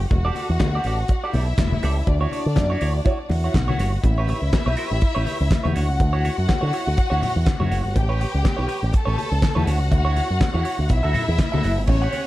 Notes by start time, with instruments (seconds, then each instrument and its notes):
0.00 muted clean electric guitar stroke
0.11 picked electric bass E1, violin section F#4 F#5, muted clean electric guitar stroke, kick, closed hi-hat, muted conga
0.25 clean electric guitar G4 A4 D5
0.35 clean electric guitar G4 A4 D5, open hi-hat, muted conga
0.50 picked electric bass E2, muted clean electric guitar stroke
0.60 picked electric bass D2, muted clean electric guitar stroke, kick, snare, clap, closed hi-hat, high conga
0.75 clean electric guitar G4 A4 D5
0.84 picked electric bass A1, clean electric guitar G4 A4 D5, open hi-hat
0.99 muted clean electric guitar stroke
1.08 muted clean electric guitar stroke, kick, closed hi-hat, muted conga
1.24 clean electric guitar G4 A4 D5
1.33 picked electric bass B1, violin section E4 E5, clean electric guitar G4 A4 D5, open hi-hat, muted conga
1.49 muted clean electric guitar stroke
1.58 picked electric bass E1, muted clean electric guitar stroke, kick, snare, clap, closed hi-hat, high conga
1.72 muted clean electric guitar stroke, high conga
1.83 picked electric bass C#2, clean electric guitar G4 A4 D5, snare, open hi-hat
1.97 muted clean electric guitar stroke
2.07 picked electric bass D2, violin section D4 D5, muted clean electric guitar stroke, kick, closed hi-hat, muted conga
2.21 clean electric guitar E4 F#4 C#5
2.31 clean electric guitar E4 F#4 C#5, open hi-hat, muted conga
2.46 picked electric bass D3, muted clean electric guitar stroke
2.56 picked electric bass F#2, muted clean electric guitar stroke, kick, snare, clap, closed hi-hat, high conga
2.70 clean electric guitar E4 F#4 C#5
2.81 picked electric bass D2, clean electric guitar E4 F#4 C#5, open hi-hat
2.95 muted clean electric guitar stroke
3.05 clean electric guitar E4 F#4 C#5, kick, closed hi-hat, muted conga
3.19 muted clean electric guitar stroke
3.29 picked electric bass E2, violin section F#4 F#5, muted clean electric guitar stroke, open hi-hat, muted conga
3.44 clean electric guitar E4 F#4 C#5
3.54 picked electric bass B1, muted clean electric guitar stroke, kick, snare, clap, closed hi-hat, high conga
3.68 clean electric guitar E4 F#4 C#5, high conga
3.79 picked electric bass G1, clean electric guitar E4 F#4 C#5, snare, open hi-hat
3.93 muted clean electric guitar stroke
4.04 picked electric bass A1, violin section E4 E5, muted clean electric guitar stroke, kick, closed hi-hat, muted conga
4.18 clean electric guitar G4 B4 C#5
4.28 clean electric guitar G4 B4 C#5, open hi-hat, muted conga
4.42 picked electric bass C#2
4.53 muted clean electric guitar stroke, kick, snare, clap, closed hi-hat, high conga
4.66 picked electric bass B1, clean electric guitar G4 B4 C#5
4.77 clean electric guitar G4 B4 C#5, open hi-hat
4.91 picked electric bass A1, muted clean electric guitar stroke
5.01 muted clean electric guitar stroke, kick, closed hi-hat
5.15 picked electric bass A1, clean electric guitar G4 B4 C#5
5.25 clean electric guitar G4 B4 C#5, open hi-hat, muted conga
5.41 picked electric bass C#2
5.51 muted clean electric guitar stroke, kick, snare, clap, closed hi-hat, high conga
5.63 picked electric bass E2, clean electric guitar G4 B4 C#5, high conga
5.75 picked electric bass D2, clean electric guitar E4 F#4 C#5, violin section F#4 F#5, snare, open hi-hat
5.90 picked electric bass C#2, muted clean electric guitar stroke
5.99 picked electric bass D2, muted clean electric guitar stroke, kick, closed hi-hat, muted conga
6.13 clean electric guitar E4 F#4 C#5
6.24 clean electric guitar E4 F#4 C#5, open hi-hat, muted conga
6.37 picked electric bass F#2, muted clean electric guitar stroke
6.47 muted clean electric guitar stroke, kick, snare, clap, closed hi-hat, high conga
6.61 picked electric bass D3, clean electric guitar E4 F#4 C#5
6.73 clean electric guitar E4 F#4 C#5, open hi-hat
6.87 picked electric bass D2, muted clean electric guitar stroke
6.97 muted clean electric guitar stroke, kick, closed hi-hat, muted conga
7.10 picked electric bass D2, clean electric guitar E4 F#4 C#5
7.21 clean electric guitar E4 F#4 C#5, open hi-hat, muted conga, low conga
7.35 picked electric bass E2, muted clean electric guitar stroke
7.45 muted clean electric guitar stroke, kick, snare, clap, closed hi-hat, high conga
7.60 picked electric bass F#2, clean electric guitar E4 F#4 C#5, high conga
7.70 picked electric bass F#1, clean electric guitar E4 F#4 C#5, snare, open hi-hat
7.84 picked electric bass G1, muted clean electric guitar stroke
7.94 picked electric bass A1, violin section G4 G5, muted clean electric guitar stroke, kick, closed hi-hat, muted conga
8.09 clean electric guitar G4 B4 C#5
8.20 clean electric guitar G4 B4 C#5, open hi-hat, muted conga
8.33 picked electric bass C#2, muted clean electric guitar stroke
8.43 muted clean electric guitar stroke, kick, snare, clap, closed hi-hat, high conga
8.57 picked electric bass B1, clean electric guitar G4 B4 C#5
8.67 clean electric guitar G4 B4 C#5, open hi-hat
8.81 picked electric bass A1, muted clean electric guitar stroke
8.92 violin section A4 A5, muted clean electric guitar stroke, kick, closed hi-hat, muted conga
9.05 picked electric bass A1, clean electric guitar G4 B4 C#5
9.16 clean electric guitar G4 B4 C#5, open hi-hat, muted conga
9.31 picked electric bass C#2, muted clean electric guitar stroke
9.41 muted clean electric guitar stroke, kick, snare, clap, closed hi-hat, high conga
9.55 picked electric bass E2, clean electric guitar G4 B4 C#5, high conga
9.66 picked electric bass D2, clean electric guitar E4 F#4 C#5, violin section F#4 F#5, snare, open hi-hat
9.81 picked electric bass C#2, muted clean electric guitar stroke
9.91 picked electric bass D2, muted clean electric guitar stroke, kick, closed hi-hat, muted conga
10.05 clean electric guitar E4 F#4 C#5
10.15 clean electric guitar E4 F#4 C#5, open hi-hat, muted conga
10.29 picked electric bass F#2, muted clean electric guitar stroke
10.40 muted clean electric guitar stroke, kick, snare, clap, closed hi-hat, high conga
10.54 picked electric bass E2, clean electric guitar E4 F#4 C#5
10.63 clean electric guitar E4 F#4 C#5, open hi-hat
10.78 picked electric bass D2, muted clean electric guitar stroke
10.89 picked electric bass B1, violin section E4 E5, muted clean electric guitar stroke, kick, closed hi-hat
11.03 picked electric bass D2, clean electric guitar F#4 A4 E5
11.13 clean electric guitar F#4 A4 E5, open hi-hat, muted conga, low conga
11.27 picked electric bass E2, muted clean electric guitar stroke
11.38 muted clean electric guitar stroke, kick, snare, clap, closed hi-hat, high conga
11.52 picked electric bass D2, clean electric guitar F#4 A4 E5, high conga
11.63 picked electric bass F#1, clean electric guitar F#4 A4 E5, snare, open hi-hat
11.78 picked electric bass G1
11.87 picked electric bass A1, violin section C#4 C#5, muted clean electric guitar stroke, kick, crash, muted conga
12.02 clean electric guitar G4 C#5 F#5
12.12 clean electric guitar G4 C#5 F#5, open hi-hat, muted conga